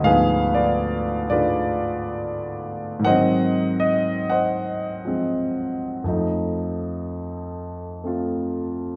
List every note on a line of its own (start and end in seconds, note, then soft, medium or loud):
0.00 3.02 D2 medium
0.00 1.28 G#2 medium
0.04 3.05 F3 medium
0.04 1.51 G#4 medium
0.04 0.55 B4 medium
0.04 0.51 F5 loud
0.10 3.07 B3 medium
0.55 1.30 F4 medium
0.55 1.30 B4 medium
0.55 1.26 D5 medium
1.29 2.98 G#2 soft
1.29 3.05 D3 soft
1.29 3.06 G#3 soft
1.29 3.01 F4 medium
1.29 3.01 B4 medium
1.29 3.00 D5 medium
2.99 6.01 G#2 medium
2.99 6.03 D#3 medium
3.05 6.05 F#3 medium
3.05 4.30 C5 medium
3.05 3.78 D#5 medium
3.05 3.82 F#5 loud
3.10 5.06 C4 medium
3.80 4.26 D#5 medium
4.30 5.76 C5 medium
4.30 5.76 D#5 medium
4.30 5.25 F#5 medium
5.05 6.04 F3 soft
5.05 6.05 G#3 soft
5.05 6.05 C4 medium
6.04 8.96 F2 medium
6.04 8.96 F3 soft
6.04 8.02 A3 medium
6.08 8.96 D#4 medium
8.04 8.96 A3 soft
8.04 8.96 C4 soft
8.04 8.96 F4 soft